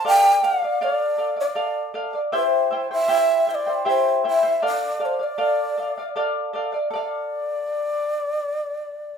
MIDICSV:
0, 0, Header, 1, 3, 480
1, 0, Start_track
1, 0, Key_signature, -1, "minor"
1, 0, Tempo, 765306
1, 26, Time_signature, 3, 2, 24, 8
1, 5756, End_track
2, 0, Start_track
2, 0, Title_t, "Charango"
2, 0, Program_c, 0, 24
2, 29, Note_on_c, 0, 69, 99
2, 31, Note_on_c, 0, 74, 87
2, 36, Note_on_c, 0, 77, 94
2, 253, Note_off_c, 0, 69, 0
2, 261, Note_on_c, 0, 69, 53
2, 262, Note_off_c, 0, 74, 0
2, 266, Note_off_c, 0, 77, 0
2, 269, Note_on_c, 0, 74, 65
2, 274, Note_on_c, 0, 77, 72
2, 384, Note_off_c, 0, 69, 0
2, 384, Note_off_c, 0, 77, 0
2, 388, Note_off_c, 0, 74, 0
2, 392, Note_on_c, 0, 77, 63
2, 403, Note_on_c, 0, 74, 51
2, 501, Note_off_c, 0, 74, 0
2, 505, Note_off_c, 0, 77, 0
2, 509, Note_on_c, 0, 74, 94
2, 511, Note_on_c, 0, 69, 75
2, 513, Note_on_c, 0, 77, 92
2, 732, Note_off_c, 0, 69, 0
2, 736, Note_off_c, 0, 74, 0
2, 739, Note_off_c, 0, 77, 0
2, 739, Note_on_c, 0, 69, 59
2, 744, Note_on_c, 0, 74, 54
2, 746, Note_on_c, 0, 77, 56
2, 847, Note_off_c, 0, 77, 0
2, 854, Note_off_c, 0, 74, 0
2, 855, Note_on_c, 0, 77, 52
2, 862, Note_on_c, 0, 74, 48
2, 863, Note_off_c, 0, 69, 0
2, 967, Note_off_c, 0, 74, 0
2, 970, Note_off_c, 0, 77, 0
2, 973, Note_on_c, 0, 69, 79
2, 974, Note_on_c, 0, 74, 88
2, 978, Note_on_c, 0, 77, 99
2, 1209, Note_off_c, 0, 69, 0
2, 1209, Note_off_c, 0, 74, 0
2, 1216, Note_off_c, 0, 77, 0
2, 1216, Note_on_c, 0, 69, 64
2, 1217, Note_on_c, 0, 74, 67
2, 1223, Note_on_c, 0, 77, 79
2, 1329, Note_off_c, 0, 77, 0
2, 1336, Note_on_c, 0, 77, 58
2, 1339, Note_off_c, 0, 74, 0
2, 1341, Note_off_c, 0, 69, 0
2, 1347, Note_on_c, 0, 74, 50
2, 1454, Note_off_c, 0, 77, 0
2, 1457, Note_off_c, 0, 74, 0
2, 1457, Note_on_c, 0, 67, 74
2, 1457, Note_on_c, 0, 76, 84
2, 1459, Note_on_c, 0, 72, 90
2, 1461, Note_on_c, 0, 64, 96
2, 1462, Note_on_c, 0, 79, 107
2, 1690, Note_off_c, 0, 76, 0
2, 1693, Note_off_c, 0, 64, 0
2, 1697, Note_on_c, 0, 76, 70
2, 1699, Note_off_c, 0, 72, 0
2, 1701, Note_off_c, 0, 67, 0
2, 1701, Note_on_c, 0, 64, 64
2, 1703, Note_off_c, 0, 79, 0
2, 1707, Note_on_c, 0, 72, 75
2, 1710, Note_on_c, 0, 79, 68
2, 1816, Note_off_c, 0, 79, 0
2, 1819, Note_off_c, 0, 72, 0
2, 1820, Note_off_c, 0, 64, 0
2, 1821, Note_off_c, 0, 76, 0
2, 1824, Note_on_c, 0, 79, 59
2, 1826, Note_on_c, 0, 72, 55
2, 1828, Note_on_c, 0, 64, 47
2, 1926, Note_off_c, 0, 64, 0
2, 1930, Note_off_c, 0, 72, 0
2, 1931, Note_off_c, 0, 79, 0
2, 1933, Note_on_c, 0, 64, 97
2, 1933, Note_on_c, 0, 67, 82
2, 1934, Note_on_c, 0, 76, 91
2, 1937, Note_on_c, 0, 72, 81
2, 1939, Note_on_c, 0, 79, 91
2, 2172, Note_off_c, 0, 76, 0
2, 2178, Note_off_c, 0, 72, 0
2, 2179, Note_off_c, 0, 64, 0
2, 2179, Note_off_c, 0, 67, 0
2, 2179, Note_on_c, 0, 76, 52
2, 2182, Note_off_c, 0, 79, 0
2, 2185, Note_on_c, 0, 72, 54
2, 2186, Note_on_c, 0, 64, 60
2, 2188, Note_on_c, 0, 79, 61
2, 2291, Note_off_c, 0, 79, 0
2, 2297, Note_off_c, 0, 72, 0
2, 2298, Note_on_c, 0, 79, 55
2, 2300, Note_off_c, 0, 64, 0
2, 2302, Note_off_c, 0, 76, 0
2, 2304, Note_on_c, 0, 72, 53
2, 2308, Note_on_c, 0, 64, 49
2, 2414, Note_off_c, 0, 72, 0
2, 2414, Note_off_c, 0, 79, 0
2, 2415, Note_off_c, 0, 64, 0
2, 2416, Note_on_c, 0, 76, 86
2, 2417, Note_on_c, 0, 67, 87
2, 2421, Note_on_c, 0, 72, 89
2, 2422, Note_on_c, 0, 64, 82
2, 2422, Note_on_c, 0, 79, 97
2, 2653, Note_off_c, 0, 76, 0
2, 2658, Note_off_c, 0, 64, 0
2, 2658, Note_off_c, 0, 79, 0
2, 2659, Note_off_c, 0, 72, 0
2, 2660, Note_on_c, 0, 76, 69
2, 2661, Note_off_c, 0, 67, 0
2, 2666, Note_on_c, 0, 64, 64
2, 2666, Note_on_c, 0, 72, 67
2, 2666, Note_on_c, 0, 79, 69
2, 2770, Note_off_c, 0, 79, 0
2, 2773, Note_off_c, 0, 72, 0
2, 2777, Note_on_c, 0, 79, 61
2, 2779, Note_off_c, 0, 64, 0
2, 2780, Note_on_c, 0, 72, 52
2, 2783, Note_off_c, 0, 76, 0
2, 2786, Note_on_c, 0, 64, 52
2, 2897, Note_off_c, 0, 64, 0
2, 2898, Note_off_c, 0, 72, 0
2, 2899, Note_on_c, 0, 69, 82
2, 2900, Note_on_c, 0, 74, 87
2, 2901, Note_off_c, 0, 79, 0
2, 2903, Note_on_c, 0, 77, 103
2, 3126, Note_off_c, 0, 69, 0
2, 3127, Note_off_c, 0, 74, 0
2, 3133, Note_on_c, 0, 69, 59
2, 3134, Note_off_c, 0, 77, 0
2, 3135, Note_on_c, 0, 74, 62
2, 3141, Note_on_c, 0, 77, 61
2, 3248, Note_off_c, 0, 77, 0
2, 3256, Note_on_c, 0, 77, 54
2, 3259, Note_off_c, 0, 69, 0
2, 3260, Note_off_c, 0, 74, 0
2, 3266, Note_on_c, 0, 74, 52
2, 3369, Note_off_c, 0, 74, 0
2, 3369, Note_off_c, 0, 77, 0
2, 3373, Note_on_c, 0, 69, 85
2, 3376, Note_on_c, 0, 77, 85
2, 3377, Note_on_c, 0, 74, 87
2, 3615, Note_off_c, 0, 69, 0
2, 3618, Note_off_c, 0, 74, 0
2, 3620, Note_off_c, 0, 77, 0
2, 3622, Note_on_c, 0, 69, 56
2, 3626, Note_on_c, 0, 74, 61
2, 3635, Note_on_c, 0, 77, 60
2, 3741, Note_off_c, 0, 77, 0
2, 3743, Note_off_c, 0, 69, 0
2, 3745, Note_off_c, 0, 74, 0
2, 3748, Note_on_c, 0, 77, 55
2, 3757, Note_on_c, 0, 74, 50
2, 3858, Note_off_c, 0, 74, 0
2, 3860, Note_off_c, 0, 77, 0
2, 3861, Note_on_c, 0, 69, 97
2, 3866, Note_on_c, 0, 74, 86
2, 3868, Note_on_c, 0, 77, 92
2, 4090, Note_off_c, 0, 69, 0
2, 4096, Note_off_c, 0, 74, 0
2, 4098, Note_on_c, 0, 69, 77
2, 4102, Note_off_c, 0, 77, 0
2, 4104, Note_on_c, 0, 74, 67
2, 4109, Note_on_c, 0, 77, 77
2, 4208, Note_off_c, 0, 77, 0
2, 4216, Note_on_c, 0, 77, 64
2, 4218, Note_off_c, 0, 74, 0
2, 4221, Note_off_c, 0, 69, 0
2, 4226, Note_on_c, 0, 74, 61
2, 4328, Note_off_c, 0, 74, 0
2, 4331, Note_on_c, 0, 69, 84
2, 4340, Note_off_c, 0, 77, 0
2, 4350, Note_on_c, 0, 74, 93
2, 4362, Note_on_c, 0, 77, 93
2, 5756, Note_off_c, 0, 69, 0
2, 5756, Note_off_c, 0, 74, 0
2, 5756, Note_off_c, 0, 77, 0
2, 5756, End_track
3, 0, Start_track
3, 0, Title_t, "Shakuhachi"
3, 0, Program_c, 1, 77
3, 48, Note_on_c, 1, 79, 126
3, 278, Note_on_c, 1, 77, 101
3, 287, Note_off_c, 1, 79, 0
3, 522, Note_on_c, 1, 73, 110
3, 532, Note_off_c, 1, 77, 0
3, 591, Note_off_c, 1, 73, 0
3, 591, Note_on_c, 1, 74, 110
3, 874, Note_off_c, 1, 74, 0
3, 879, Note_on_c, 1, 74, 87
3, 1208, Note_off_c, 1, 74, 0
3, 1472, Note_on_c, 1, 72, 104
3, 1804, Note_off_c, 1, 72, 0
3, 1833, Note_on_c, 1, 76, 119
3, 2199, Note_off_c, 1, 76, 0
3, 2199, Note_on_c, 1, 76, 100
3, 2224, Note_on_c, 1, 74, 109
3, 2231, Note_off_c, 1, 76, 0
3, 2432, Note_off_c, 1, 74, 0
3, 2438, Note_on_c, 1, 72, 107
3, 2655, Note_off_c, 1, 72, 0
3, 2689, Note_on_c, 1, 76, 103
3, 2901, Note_off_c, 1, 76, 0
3, 2925, Note_on_c, 1, 74, 108
3, 3171, Note_on_c, 1, 72, 92
3, 3180, Note_off_c, 1, 74, 0
3, 3284, Note_on_c, 1, 74, 102
3, 3293, Note_off_c, 1, 72, 0
3, 4114, Note_off_c, 1, 74, 0
3, 4343, Note_on_c, 1, 74, 102
3, 5756, Note_off_c, 1, 74, 0
3, 5756, End_track
0, 0, End_of_file